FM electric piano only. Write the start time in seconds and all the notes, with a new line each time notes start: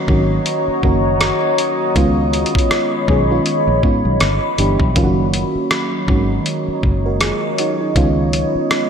Already playing: D#3 F#3 A#3 C#4 F#4
0.08 D#3 F#3 A#3 C#4 F#4
0.83 D#3 F#3 A#3 C#4 F#4
1.95 D#3 G#3 B3 C#4 F4
3.08 D#3 G#3 B3 C#4 G#4
3.30 D#3 G#3 B3 C#4 F4
3.83 D#3 G#3 B3 C#4 F4
4.58 E3 G3 B3 D4 G4
4.95 D#3 F#3 A#3 C#4 F4
5.04 F#4
6.08 D#3 F#3 G#3 C#4 F#4
6.15 A#3
7.06 F#4 A#4
7.22 F4 G#4
7.59 D#4 F#4
7.81 D#4
7.96 D#3 G#3 B3 C#4 F4